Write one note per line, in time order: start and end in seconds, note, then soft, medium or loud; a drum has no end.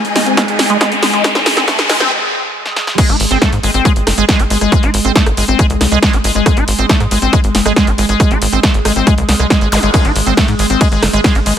0.00 2.97 G#3 medium
0.00 2.11 D#4 medium
0.00 2.11 G#4 medium
0.00 2.11 D#5 medium
0.00 2.11 G#5 medium
0.00 riser medium
0.05 closed hi-hat medium
0.16 0.23 G#3 medium
0.16 snare medium
0.16 open hi-hat medium
0.26 0.37 C4 medium
0.26 closed hi-hat medium
0.37 0.45 G#3 loud
0.37 kick loud
0.37 snare medium
0.37 closed hi-hat medium
0.48 closed hi-hat medium
0.59 snare medium
0.59 open hi-hat loud
0.70 0.77 G#3 loud
0.70 closed hi-hat medium
0.81 0.93 G#3 loud
0.81 kick loud
0.81 snare medium
0.81 closed hi-hat medium
0.92 0.96 D#4 medium
0.92 closed hi-hat medium
1.02 1.10 G#3 medium
1.02 snare medium
1.02 open hi-hat loud
1.13 1.24 G#3 medium
1.13 closed hi-hat medium
1.24 1.37 G#3 medium
1.24 kick loud
1.24 snare loud
1.24 closed hi-hat loud
1.35 1.42 D#4 medium
1.35 snare medium
1.35 closed hi-hat soft
1.46 snare loud
1.46 open hi-hat loud
1.57 1.64 C4 medium
1.57 snare medium
1.57 closed hi-hat medium
1.68 1.78 A3 medium
1.68 kick loud
1.68 snare loud
1.68 closed hi-hat medium
1.79 snare medium
1.79 closed hi-hat soft
1.89 1.97 G#3 medium
1.89 snare loud
1.89 open hi-hat loud
2.00 2.11 C4 medium
2.00 snare loud
2.00 closed hi-hat medium
2.66 snare medium
2.76 snare medium
2.87 snare medium
2.98 3.11 G#3 medium
2.98 11.59 G#3 medium
2.98 kick loud
2.98 closed hi-hat loud
2.98 crash loud
3.09 3.16 G#1 medium
3.09 3.16 D#4 medium
3.09 closed hi-hat medium
3.20 3.26 G#1 loud
3.20 open hi-hat loud
3.31 3.37 G#1 loud
3.31 3.38 C4 medium
3.31 closed hi-hat medium
3.42 3.52 A3 medium
3.42 kick loud
3.42 cross-stick soft
3.42 snare loud
3.42 closed hi-hat loud
3.53 3.59 G#2 medium
3.53 closed hi-hat medium
3.63 3.70 G#1 loud
3.63 3.71 G#3 medium
3.63 open hi-hat medium
3.74 3.81 G#1 loud
3.74 3.85 C4 medium
3.74 closed hi-hat medium
3.85 3.92 G#3 loud
3.85 kick loud
3.85 closed hi-hat loud
3.96 4.03 G#1 medium
3.96 closed hi-hat medium
4.07 4.13 F#1 loud
4.07 cross-stick medium
4.07 snare medium
4.07 open hi-hat loud
4.18 4.24 G#1 medium
4.18 4.25 G#3 loud
4.18 closed hi-hat medium
4.29 4.41 G#3 loud
4.29 kick loud
4.29 snare loud
4.29 closed hi-hat loud
4.39 4.46 G#1 medium
4.39 4.44 D#4 medium
4.39 closed hi-hat medium
4.50 4.57 G#1 loud
4.50 4.58 G#3 medium
4.50 open hi-hat loud
4.61 4.68 G#1 medium
4.61 4.72 G#3 medium
4.61 cross-stick soft
4.61 closed hi-hat medium
4.72 4.84 G#3 medium
4.72 kick loud
4.72 closed hi-hat loud
4.83 4.89 G#1 medium
4.83 4.90 D#4 medium
4.83 closed hi-hat medium
4.94 5.00 G#1 loud
4.94 open hi-hat loud
5.05 5.11 G#1 loud
5.05 5.12 C4 medium
5.05 closed hi-hat medium
5.16 5.26 A3 medium
5.16 kick loud
5.16 snare loud
5.16 closed hi-hat loud
5.26 5.33 G#1 medium
5.26 cross-stick medium
5.26 closed hi-hat medium
5.37 5.44 G#1 medium
5.37 5.45 G#3 medium
5.37 open hi-hat loud
5.48 5.55 G#1 loud
5.48 5.59 C4 medium
5.48 closed hi-hat medium
5.59 5.66 G#3 loud
5.59 kick loud
5.59 closed hi-hat loud
5.70 5.76 C2 medium
5.70 closed hi-hat medium
5.81 5.87 C2 loud
5.81 cross-stick soft
5.81 snare medium
5.81 open hi-hat loud
5.92 5.98 C2 medium
5.92 5.99 G#3 medium
5.92 closed hi-hat medium
6.03 6.15 G#3 loud
6.03 kick loud
6.03 snare loud
6.03 closed hi-hat loud
6.13 6.20 G#1 medium
6.13 6.18 D#4 medium
6.13 closed hi-hat medium
6.24 6.31 G#1 loud
6.24 6.32 G#3 medium
6.24 open hi-hat loud
6.35 6.42 G#1 medium
6.35 6.45 G#3 medium
6.35 closed hi-hat medium
6.46 6.58 G#3 medium
6.46 kick loud
6.46 cross-stick medium
6.46 closed hi-hat loud
6.57 6.63 G#1 medium
6.57 6.64 D#4 medium
6.57 closed hi-hat soft
6.68 6.74 G#1 loud
6.68 open hi-hat loud
6.79 6.85 G#1 medium
6.79 6.86 C4 medium
6.79 closed hi-hat medium
6.89 7.00 A3 medium
6.89 kick loud
6.89 snare loud
6.89 closed hi-hat medium
7.00 7.07 G#2 medium
7.00 cross-stick soft
7.00 closed hi-hat medium
7.11 7.18 G#1 loud
7.11 7.19 G#3 medium
7.11 open hi-hat loud
7.22 7.29 G#1 medium
7.22 7.32 C4 medium
7.22 closed hi-hat medium
7.33 7.40 G#3 loud
7.33 kick loud
7.33 closed hi-hat medium
7.44 7.50 G#1 medium
7.44 closed hi-hat medium
7.55 7.61 F#1 loud
7.55 snare medium
7.55 open hi-hat loud
7.66 7.72 G#1 medium
7.66 7.73 G#3 loud
7.66 cross-stick medium
7.66 closed hi-hat medium
7.76 7.89 G#3 loud
7.76 kick loud
7.76 snare loud
7.76 closed hi-hat medium
7.87 7.94 G#1 medium
7.87 7.92 D#4 medium
7.87 closed hi-hat medium
7.98 8.05 G#1 loud
7.98 8.06 G#3 medium
7.98 open hi-hat loud
8.09 8.16 G#1 medium
8.09 8.19 G#3 medium
8.09 closed hi-hat medium
8.20 8.32 G#3 medium
8.20 kick loud
8.20 cross-stick soft
8.20 closed hi-hat medium
8.31 8.37 G#1 medium
8.31 8.38 D#4 medium
8.31 closed hi-hat soft
8.42 8.48 G#1 loud
8.42 open hi-hat loud
8.52 8.59 G#1 loud
8.52 8.60 C4 medium
8.52 closed hi-hat medium
8.63 8.74 A3 medium
8.63 kick loud
8.63 snare loud
8.63 closed hi-hat medium
8.74 8.81 G#1 medium
8.74 closed hi-hat soft
8.85 8.92 G#1 loud
8.85 8.92 G#3 medium
8.85 cross-stick medium
8.85 open hi-hat loud
8.96 9.03 G#1 medium
8.96 9.06 C4 medium
8.96 closed hi-hat medium
9.07 9.14 G#3 loud
9.07 kick loud
9.07 closed hi-hat medium
9.18 9.24 C2 medium
9.18 closed hi-hat medium
9.29 9.35 C2 loud
9.29 snare medium
9.29 open hi-hat loud
9.39 9.46 C2 medium
9.39 9.47 G#3 medium
9.39 cross-stick soft
9.39 closed hi-hat medium
9.50 9.61 G#3 medium
9.50 kick loud
9.50 snare loud
9.50 closed hi-hat medium
9.61 9.68 G#1 medium
9.61 9.69 G#3 medium
9.61 closed hi-hat medium
9.72 9.79 G#1 loud
9.72 9.79 G#3 medium
9.72 open hi-hat loud
9.72 zap medium
9.83 9.89 G#1 medium
9.83 9.90 G#3 medium
9.83 closed hi-hat medium
9.94 10.06 G#3 medium
9.94 kick loud
9.94 closed hi-hat loud
9.94 ride medium
10.05 10.11 G#1 medium
10.05 10.12 D#4 medium
10.05 closed hi-hat soft
10.16 10.22 G#1 loud
10.16 open hi-hat loud
10.26 10.33 G#1 medium
10.26 10.34 C4 medium
10.26 closed hi-hat medium
10.37 10.48 A3 medium
10.37 kick loud
10.37 cross-stick soft
10.37 snare loud
10.37 closed hi-hat medium
10.37 ride medium
10.48 10.55 G#2 medium
10.48 closed hi-hat soft
10.59 10.66 G#1 loud
10.59 10.66 G#3 medium
10.59 open hi-hat medium
10.70 10.76 G#1 loud
10.70 10.80 C4 medium
10.70 closed hi-hat medium
10.81 10.88 G#3 loud
10.81 kick loud
10.81 closed hi-hat medium
10.81 ride medium
10.92 10.98 G#1 medium
10.92 11.02 G#3 medium
10.92 closed hi-hat medium
11.03 11.09 F#1 loud
11.03 cross-stick medium
11.03 snare medium
11.03 open hi-hat loud
11.13 11.20 G#1 loud
11.13 11.21 G#3 loud
11.13 closed hi-hat medium
11.24 11.37 G#3 loud
11.24 kick loud
11.24 snare loud
11.24 closed hi-hat medium
11.24 ride medium
11.35 11.42 G#1 medium
11.35 11.40 D#4 medium
11.35 closed hi-hat medium
11.46 11.53 G#1 loud
11.46 11.53 G#3 medium
11.46 open hi-hat loud